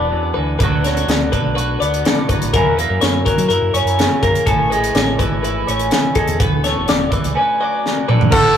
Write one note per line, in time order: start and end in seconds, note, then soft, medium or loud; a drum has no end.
0.00 0.10 E1 medium
0.00 0.11 E2 medium
0.00 0.56 E3 medium
0.00 0.60 A3 soft
0.00 0.57 B3 medium
0.00 0.60 D4 medium
0.00 0.34 D5 medium
0.11 0.34 E2 medium
0.11 0.36 F#2 medium
0.34 0.58 D2 medium
0.34 0.60 E2 medium
0.34 0.58 B4 medium
0.59 1.03 D2 loud
0.59 2.53 D2 medium
0.59 1.31 D3 medium
0.59 0.86 F#3 medium
0.59 0.84 B4 medium
0.59 kick loud
0.59 closed hi-hat medium
0.64 1.80 B3 medium
0.64 1.56 F#4 medium
0.84 2.28 F#3 medium
0.84 1.09 C#5 medium
0.84 snare soft
0.84 closed hi-hat medium
0.97 closed hi-hat medium
1.08 1.29 D2 medium
1.08 1.32 D5 medium
1.08 snare medium
1.08 closed hi-hat medium
1.32 1.76 B1 medium
1.32 2.53 D3 medium
1.32 1.54 B4 medium
1.32 kick medium
1.32 closed hi-hat medium
1.55 2.50 F#4 medium
1.55 1.80 B4 medium
1.55 closed hi-hat medium
1.80 2.02 D2 medium
1.80 2.51 B3 medium
1.80 2.28 D5 medium
1.80 closed hi-hat medium
1.94 closed hi-hat medium
2.04 2.53 A2 medium
2.04 snare loud
2.04 closed hi-hat medium
2.29 2.53 F#3 medium
2.29 2.53 B4 medium
2.29 kick medium
2.29 closed hi-hat medium
2.41 2.52 A1 medium
2.41 closed hi-hat medium
2.53 4.44 F#2 medium
2.53 2.64 F#2 loud
2.53 3.25 F#3 medium
2.53 2.77 A#3 medium
2.53 3.73 C#4 medium
2.53 3.51 E4 medium
2.53 2.77 A#4 medium
2.53 kick loud
2.53 closed hi-hat medium
2.66 2.87 E2 medium
2.77 4.22 A#3 medium
2.77 3.01 B4 medium
2.77 closed hi-hat medium
2.90 3.00 F#2 medium
3.01 3.24 F#2 medium
3.01 3.25 C#5 medium
3.01 snare loud
3.01 closed hi-hat medium
3.25 4.44 F#3 medium
3.25 3.47 A#4 medium
3.25 kick medium
3.25 closed hi-hat medium
3.38 3.48 F#3 medium
3.38 closed hi-hat medium
3.49 3.61 F#2 medium
3.49 5.44 E4 medium
3.49 3.73 A#4 medium
3.49 closed hi-hat medium
3.62 3.73 F#2 medium
3.74 3.84 F#2 medium
3.74 4.44 C#4 medium
3.74 4.22 C#5 medium
3.74 closed hi-hat medium
3.85 4.07 F#2 medium
3.85 closed hi-hat medium
3.98 4.43 C#3 medium
3.98 snare loud
3.98 closed hi-hat medium
4.23 4.34 F#2 medium
4.23 4.44 A#3 medium
4.23 4.47 A#4 medium
4.23 kick medium
4.23 closed hi-hat medium
4.35 closed hi-hat medium
4.46 4.90 A1 medium
4.46 5.91 A2 medium
4.46 5.66 C#4 medium
4.46 4.71 A4 medium
4.46 kick loud
4.46 closed hi-hat medium
4.70 6.15 G#3 medium
4.70 4.95 B4 medium
4.70 closed hi-hat soft
4.84 closed hi-hat medium
4.95 5.16 A1 medium
4.95 5.19 C#5 medium
4.95 snare loud
4.95 closed hi-hat medium
5.19 5.62 G#1 medium
5.19 6.37 E3 medium
5.19 5.42 B4 medium
5.19 kick medium
5.19 closed hi-hat medium
5.43 6.38 E4 medium
5.43 5.67 B4 medium
5.43 closed hi-hat medium
5.67 5.89 A1 medium
5.67 6.37 C#4 medium
5.67 6.16 C#5 medium
5.67 closed hi-hat medium
5.79 closed hi-hat medium
5.91 6.38 E2 medium
5.91 snare loud
5.91 closed hi-hat medium
6.15 6.37 G#3 medium
6.15 6.40 A4 medium
6.15 kick medium
6.15 closed hi-hat medium
6.28 6.39 E2 medium
6.28 closed hi-hat medium
6.39 6.51 E1 medium
6.39 7.33 E2 medium
6.39 7.33 B3 medium
6.39 6.64 B4 medium
6.39 kick loud
6.39 closed hi-hat medium
6.53 6.74 D2 medium
6.64 7.34 A3 medium
6.64 6.88 C#5 medium
6.64 snare soft
6.64 closed hi-hat medium
6.77 6.87 E1 medium
6.88 7.10 E1 medium
6.88 7.13 D5 medium
6.88 snare loud
6.88 closed hi-hat medium
7.10 7.33 E3 medium
7.10 7.36 B4 medium
7.10 kick medium
7.10 closed hi-hat medium
7.24 7.35 C#2 medium
7.24 closed hi-hat medium
7.34 8.32 D2 medium
7.34 8.29 C#4 medium
7.34 7.61 B4 medium
7.60 8.33 F#3 medium
7.60 8.08 D5 medium
7.86 snare medium
8.08 8.33 D3 medium
8.08 8.32 B4 medium
8.08 mid tom medium
8.21 floor tom medium
8.31 8.57 A1 loud
8.31 8.57 A2 medium
8.31 8.57 A4 medium
8.31 8.56 F#5 medium
8.31 kick loud
8.31 crash loud